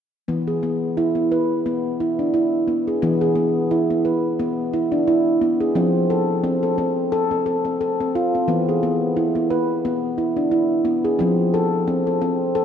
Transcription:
0, 0, Header, 1, 2, 480
1, 0, Start_track
1, 0, Tempo, 681818
1, 194, Time_signature, 4, 2, 24, 8
1, 8903, End_track
2, 0, Start_track
2, 0, Title_t, "Handpan"
2, 0, Program_c, 0, 114
2, 198, Note_on_c, 0, 59, 58
2, 201, Note_on_c, 0, 52, 58
2, 331, Note_off_c, 0, 59, 0
2, 334, Note_on_c, 0, 68, 46
2, 438, Note_off_c, 0, 68, 0
2, 442, Note_on_c, 0, 59, 55
2, 680, Note_off_c, 0, 59, 0
2, 685, Note_on_c, 0, 64, 61
2, 811, Note_on_c, 0, 59, 46
2, 816, Note_off_c, 0, 64, 0
2, 918, Note_off_c, 0, 59, 0
2, 927, Note_on_c, 0, 71, 53
2, 1164, Note_off_c, 0, 71, 0
2, 1167, Note_on_c, 0, 59, 62
2, 1404, Note_off_c, 0, 59, 0
2, 1410, Note_on_c, 0, 64, 54
2, 1540, Note_off_c, 0, 64, 0
2, 1542, Note_on_c, 0, 62, 49
2, 1645, Note_off_c, 0, 62, 0
2, 1646, Note_on_c, 0, 64, 56
2, 1884, Note_off_c, 0, 64, 0
2, 1884, Note_on_c, 0, 59, 53
2, 2018, Note_off_c, 0, 59, 0
2, 2024, Note_on_c, 0, 68, 51
2, 2098, Note_off_c, 0, 52, 0
2, 2127, Note_off_c, 0, 68, 0
2, 2128, Note_on_c, 0, 59, 71
2, 2131, Note_on_c, 0, 52, 70
2, 2260, Note_off_c, 0, 59, 0
2, 2262, Note_on_c, 0, 68, 57
2, 2362, Note_on_c, 0, 59, 61
2, 2366, Note_off_c, 0, 68, 0
2, 2604, Note_off_c, 0, 59, 0
2, 2612, Note_on_c, 0, 64, 61
2, 2743, Note_off_c, 0, 64, 0
2, 2749, Note_on_c, 0, 59, 52
2, 2850, Note_off_c, 0, 59, 0
2, 2851, Note_on_c, 0, 71, 53
2, 3089, Note_off_c, 0, 71, 0
2, 3094, Note_on_c, 0, 59, 70
2, 3331, Note_off_c, 0, 59, 0
2, 3333, Note_on_c, 0, 64, 57
2, 3462, Note_on_c, 0, 62, 60
2, 3464, Note_off_c, 0, 64, 0
2, 3567, Note_off_c, 0, 62, 0
2, 3573, Note_on_c, 0, 64, 66
2, 3810, Note_off_c, 0, 64, 0
2, 3812, Note_on_c, 0, 59, 61
2, 3944, Note_off_c, 0, 59, 0
2, 3946, Note_on_c, 0, 68, 55
2, 4023, Note_off_c, 0, 52, 0
2, 4050, Note_off_c, 0, 68, 0
2, 4050, Note_on_c, 0, 53, 66
2, 4055, Note_on_c, 0, 60, 69
2, 4291, Note_off_c, 0, 60, 0
2, 4295, Note_on_c, 0, 69, 61
2, 4531, Note_off_c, 0, 69, 0
2, 4531, Note_on_c, 0, 60, 67
2, 4664, Note_off_c, 0, 60, 0
2, 4666, Note_on_c, 0, 69, 51
2, 4770, Note_off_c, 0, 69, 0
2, 4773, Note_on_c, 0, 60, 64
2, 5010, Note_off_c, 0, 60, 0
2, 5013, Note_on_c, 0, 69, 68
2, 5145, Note_off_c, 0, 69, 0
2, 5147, Note_on_c, 0, 60, 57
2, 5250, Note_off_c, 0, 60, 0
2, 5252, Note_on_c, 0, 69, 55
2, 5384, Note_off_c, 0, 69, 0
2, 5384, Note_on_c, 0, 60, 54
2, 5488, Note_off_c, 0, 60, 0
2, 5496, Note_on_c, 0, 69, 61
2, 5626, Note_off_c, 0, 69, 0
2, 5635, Note_on_c, 0, 60, 55
2, 5734, Note_off_c, 0, 60, 0
2, 5740, Note_on_c, 0, 65, 62
2, 5868, Note_off_c, 0, 65, 0
2, 5876, Note_on_c, 0, 60, 53
2, 5940, Note_off_c, 0, 53, 0
2, 5968, Note_on_c, 0, 52, 65
2, 5973, Note_on_c, 0, 59, 67
2, 5974, Note_off_c, 0, 60, 0
2, 6104, Note_off_c, 0, 59, 0
2, 6116, Note_on_c, 0, 68, 51
2, 6214, Note_off_c, 0, 68, 0
2, 6215, Note_on_c, 0, 59, 61
2, 6450, Note_off_c, 0, 59, 0
2, 6453, Note_on_c, 0, 64, 59
2, 6583, Note_off_c, 0, 64, 0
2, 6584, Note_on_c, 0, 59, 54
2, 6688, Note_off_c, 0, 59, 0
2, 6691, Note_on_c, 0, 71, 61
2, 6928, Note_off_c, 0, 71, 0
2, 6934, Note_on_c, 0, 59, 68
2, 7166, Note_on_c, 0, 64, 53
2, 7169, Note_off_c, 0, 59, 0
2, 7297, Note_on_c, 0, 62, 54
2, 7299, Note_off_c, 0, 64, 0
2, 7402, Note_on_c, 0, 64, 60
2, 7403, Note_off_c, 0, 62, 0
2, 7637, Note_on_c, 0, 59, 62
2, 7641, Note_off_c, 0, 64, 0
2, 7773, Note_off_c, 0, 59, 0
2, 7776, Note_on_c, 0, 68, 59
2, 7854, Note_off_c, 0, 52, 0
2, 7877, Note_on_c, 0, 60, 66
2, 7881, Note_off_c, 0, 68, 0
2, 7888, Note_on_c, 0, 53, 66
2, 8118, Note_off_c, 0, 60, 0
2, 8123, Note_on_c, 0, 69, 64
2, 8360, Note_on_c, 0, 60, 64
2, 8361, Note_off_c, 0, 69, 0
2, 8493, Note_off_c, 0, 60, 0
2, 8496, Note_on_c, 0, 69, 50
2, 8599, Note_on_c, 0, 60, 63
2, 8600, Note_off_c, 0, 69, 0
2, 8836, Note_on_c, 0, 69, 67
2, 8837, Note_off_c, 0, 60, 0
2, 8903, Note_off_c, 0, 53, 0
2, 8903, Note_off_c, 0, 69, 0
2, 8903, End_track
0, 0, End_of_file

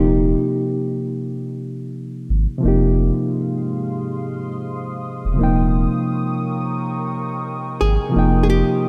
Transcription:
0, 0, Header, 1, 5, 480
1, 0, Start_track
1, 0, Tempo, 689655
1, 1828, Time_signature, 4, 2, 24, 8
1, 6186, End_track
2, 0, Start_track
2, 0, Title_t, "Ambient pad"
2, 0, Program_c, 0, 92
2, 1827, Note_on_c, 0, 84, 71
2, 1828, Note_on_c, 0, 77, 68
2, 1828, Note_on_c, 0, 87, 81
2, 1829, Note_on_c, 0, 56, 76
2, 3729, Note_off_c, 0, 77, 0
2, 3729, Note_off_c, 0, 84, 0
2, 3730, Note_off_c, 0, 56, 0
2, 3746, Note_on_c, 0, 85, 68
2, 3748, Note_on_c, 0, 70, 73
2, 3748, Note_on_c, 0, 79, 65
2, 5640, Note_off_c, 0, 87, 0
2, 5648, Note_off_c, 0, 85, 0
2, 5649, Note_off_c, 0, 70, 0
2, 5649, Note_off_c, 0, 79, 0
2, 5668, Note_on_c, 0, 56, 73
2, 5668, Note_on_c, 0, 77, 67
2, 5668, Note_on_c, 0, 84, 67
2, 5669, Note_on_c, 0, 87, 88
2, 6186, Note_off_c, 0, 56, 0
2, 6186, Note_off_c, 0, 77, 0
2, 6186, Note_off_c, 0, 84, 0
2, 6186, Note_off_c, 0, 87, 0
2, 6186, End_track
3, 0, Start_track
3, 0, Title_t, "Hollow-body jazz guitar"
3, 0, Program_c, 1, 26
3, 0, Note_on_c, 1, 63, 74
3, 605, Note_off_c, 1, 63, 0
3, 5433, Note_on_c, 1, 68, 99
3, 5840, Note_off_c, 1, 68, 0
3, 5870, Note_on_c, 1, 68, 79
3, 5910, Note_off_c, 1, 68, 0
3, 5913, Note_on_c, 1, 67, 97
3, 6186, Note_off_c, 1, 67, 0
3, 6186, End_track
4, 0, Start_track
4, 0, Title_t, "Reed electric piano"
4, 0, Program_c, 2, 4
4, 0, Note_on_c, 2, 48, 64
4, 0, Note_on_c, 2, 53, 56
4, 0, Note_on_c, 2, 58, 56
4, 0, Note_on_c, 2, 63, 56
4, 0, Note_on_c, 2, 67, 73
4, 44, Control_c, 2, 64, 127
4, 1785, Note_off_c, 2, 48, 0
4, 1793, Note_off_c, 2, 53, 0
4, 1796, Note_on_c, 2, 48, 69
4, 1801, Note_off_c, 2, 58, 0
4, 1810, Note_off_c, 2, 63, 0
4, 1813, Note_on_c, 2, 53, 60
4, 1819, Note_off_c, 2, 67, 0
4, 1830, Note_on_c, 2, 58, 61
4, 1839, Control_c, 2, 64, 0
4, 1846, Note_on_c, 2, 63, 60
4, 1864, Note_on_c, 2, 67, 67
4, 1955, Control_c, 2, 64, 127
4, 3704, Note_off_c, 2, 48, 0
4, 3713, Note_off_c, 2, 53, 0
4, 3716, Note_on_c, 2, 48, 65
4, 3722, Note_off_c, 2, 58, 0
4, 3729, Note_off_c, 2, 63, 0
4, 3733, Note_on_c, 2, 53, 56
4, 3738, Note_off_c, 2, 67, 0
4, 3749, Note_on_c, 2, 58, 59
4, 3758, Control_c, 2, 64, 0
4, 3767, Note_on_c, 2, 63, 58
4, 3783, Note_on_c, 2, 79, 67
4, 3863, Control_c, 2, 64, 127
4, 5621, Note_off_c, 2, 48, 0
4, 5629, Note_on_c, 2, 48, 69
4, 5633, Note_off_c, 2, 53, 0
4, 5641, Note_off_c, 2, 58, 0
4, 5648, Note_on_c, 2, 53, 66
4, 5650, Note_off_c, 2, 63, 0
4, 5658, Note_off_c, 2, 79, 0
4, 5664, Note_on_c, 2, 58, 62
4, 5678, Control_c, 2, 64, 0
4, 5682, Note_on_c, 2, 63, 59
4, 5698, Note_on_c, 2, 79, 75
4, 5806, Control_c, 2, 64, 127
4, 6186, Note_off_c, 2, 48, 0
4, 6186, Note_off_c, 2, 53, 0
4, 6186, Note_off_c, 2, 58, 0
4, 6186, Note_off_c, 2, 63, 0
4, 6186, Note_off_c, 2, 79, 0
4, 6186, End_track
5, 0, Start_track
5, 0, Title_t, "Sub bass"
5, 0, Program_c, 3, 38
5, 0, Note_on_c, 3, 27, 101
5, 247, Note_off_c, 3, 27, 0
5, 1598, Note_on_c, 3, 32, 89
5, 1713, Note_off_c, 3, 32, 0
5, 1838, Note_on_c, 3, 29, 108
5, 2166, Note_off_c, 3, 29, 0
5, 3653, Note_on_c, 3, 28, 89
5, 3742, Note_off_c, 3, 28, 0
5, 3757, Note_on_c, 3, 27, 107
5, 4086, Note_off_c, 3, 27, 0
5, 5436, Note_on_c, 3, 32, 84
5, 5552, Note_off_c, 3, 32, 0
5, 5676, Note_on_c, 3, 29, 107
5, 6005, Note_off_c, 3, 29, 0
5, 6186, End_track
0, 0, End_of_file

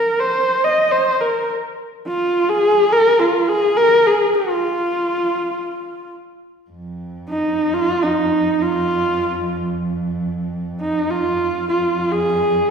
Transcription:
0, 0, Header, 1, 3, 480
1, 0, Start_track
1, 0, Tempo, 500000
1, 12195, End_track
2, 0, Start_track
2, 0, Title_t, "Horsehead fiddle"
2, 0, Program_c, 0, 110
2, 0, Note_on_c, 0, 70, 86
2, 188, Note_on_c, 0, 72, 91
2, 203, Note_off_c, 0, 70, 0
2, 614, Note_on_c, 0, 75, 96
2, 628, Note_off_c, 0, 72, 0
2, 882, Note_on_c, 0, 72, 92
2, 896, Note_off_c, 0, 75, 0
2, 1156, Note_on_c, 0, 70, 78
2, 1170, Note_off_c, 0, 72, 0
2, 1431, Note_off_c, 0, 70, 0
2, 1987, Note_on_c, 0, 65, 94
2, 2393, Note_on_c, 0, 68, 109
2, 2408, Note_off_c, 0, 65, 0
2, 2804, Note_on_c, 0, 70, 106
2, 2819, Note_off_c, 0, 68, 0
2, 3063, Note_on_c, 0, 65, 92
2, 3078, Note_off_c, 0, 70, 0
2, 3345, Note_on_c, 0, 68, 100
2, 3360, Note_off_c, 0, 65, 0
2, 3618, Note_on_c, 0, 70, 109
2, 3632, Note_off_c, 0, 68, 0
2, 3904, Note_on_c, 0, 68, 94
2, 3918, Note_off_c, 0, 70, 0
2, 4175, Note_on_c, 0, 65, 98
2, 4189, Note_off_c, 0, 68, 0
2, 5866, Note_off_c, 0, 65, 0
2, 6999, Note_on_c, 0, 63, 85
2, 7429, Note_on_c, 0, 65, 100
2, 7444, Note_off_c, 0, 63, 0
2, 7707, Note_on_c, 0, 63, 89
2, 7721, Note_off_c, 0, 65, 0
2, 8275, Note_on_c, 0, 65, 92
2, 8290, Note_off_c, 0, 63, 0
2, 9249, Note_off_c, 0, 65, 0
2, 10372, Note_on_c, 0, 63, 81
2, 10658, Note_on_c, 0, 65, 85
2, 10672, Note_off_c, 0, 63, 0
2, 11202, Note_off_c, 0, 65, 0
2, 11221, Note_on_c, 0, 65, 83
2, 11636, Note_on_c, 0, 68, 94
2, 11650, Note_off_c, 0, 65, 0
2, 12195, Note_off_c, 0, 68, 0
2, 12195, End_track
3, 0, Start_track
3, 0, Title_t, "Cello"
3, 0, Program_c, 1, 42
3, 6437, Note_on_c, 1, 41, 64
3, 10924, Note_off_c, 1, 41, 0
3, 10930, Note_on_c, 1, 41, 71
3, 12195, Note_off_c, 1, 41, 0
3, 12195, End_track
0, 0, End_of_file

